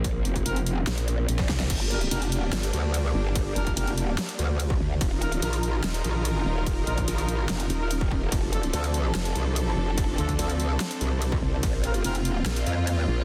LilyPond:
<<
  \new Staff \with { instrumentName = "Brass ensemble" } { \time 4/4 \key g \minor \tempo 4 = 145 r4 <c' f' bes'>16 r2 r8. | r8 <d' g' bes'>16 r16 <d' g' bes'>16 r2 r8. | r8 <d' g' bes'>16 r16 <d' g' bes'>16 r2 r8. | r8 <ees' f' bes'>16 r16 <ees' f' bes'>16 r2 r8. |
r8 <ees' f' bes'>16 r2 <ees' f' bes'>16 r4 | r8 <d' f' a'>16 r16 <d' f' a'>16 r2 r8. | r8 <d' f' a'>16 r16 <d' f' a'>16 r2 r8. | r8 <c' f' bes'>16 r16 <c' f' bes'>16 r2 r8. | }
  \new Staff \with { instrumentName = "String section" } { \time 4/4 \key g \minor <f bes c'>1 | <g bes d'>1~ | <g bes d'>1 | <ees ees' f' bes'>1~ |
<ees ees' f' bes'>1 | <f c' d' a'>1~ | <f c' d' a'>1 | <bes f'>1 | }
  \new Staff \with { instrumentName = "Wobble bass" } { \clef bass \time 4/4 \key g \minor r4 f,,4 r2 | r4 f,,4 r8 d,4 r8 | r4 f,,4 r8 d,4 r8 | r4 bes,,4 r8 bes,,4 r8 |
r4 bes,,4 f,,8 r4. | r4 d,4 r8 c,4 r8 | r4 d,4 r8 c,4 r8 | r4 f,,4 r8 f,4 r8 | }
  \new Staff \with { instrumentName = "Wobble bass" } { \clef bass \time 4/4 \key g \minor bes,,8 f,,8 r4 bes,,4 bes,,8 c,8 | g,,4 r4 g,,8 r4 g,,8~ | g,,8 f,,8 r2 r8 d,8 | ees,,4 r4 ees,,8 r4 ees,,8~ |
ees,,8 bes,,8 r4. ees,,4. | f,,4 r4 f,,8 r4 f,,8~ | f,,8 d,8 r2 r8 c,8 | bes,,4 r4 bes,,8 r4 bes,,8 | }
  \new DrumStaff \with { instrumentName = "Drums" } \drummode { \time 4/4 <hh bd>8 hh16 <hh bd>16 hh16 hh16 hh8 <hh sn>16 hh16 hh8 hh16 <bd sn>16 <bd sn>16 sn16 | <cymc hh bd cymr>8 hh16 hh16 <hh cymr>16 hh16 hh8 <hh cymr sn>16 hh16 hh8 <hh cymr>4 | <hh bd cymr>8 hh16 <hh bd>16 <hh cymr>16 hh16 hh8 <hh cymr sn>16 hh16 hh8 <hh cymr>16 bd8. | <hh bd cymr>8 hh16 hh16 <hh cymr>16 hh16 hh8 <hh cymr sn>16 hh16 hh8 <hh cymr>4 |
<hh bd cymr>8 hh16 <hh bd>16 <hh cymr>16 hh16 hh8 <hh cymr sn>16 hh16 hh8 <hh cymr>16 bd16 bd8 | <hh bd cymr>8 hh16 hh16 <hh cymr>16 hh16 hh8 <hh cymr sn>16 hh16 hh8 <hh cymr>4 | <hh bd cymr>8 hh16 <hh bd>16 <hh cymr>16 hh16 hh8 <hh cymr sn>16 hh16 hh8 <hh cymr>16 bd8. | <hh bd cymr>8 hh16 hh16 <hh cymr>16 hh16 hh8 <hh cymr sn>16 hh16 hh8 <hh cymr>4 | }
>>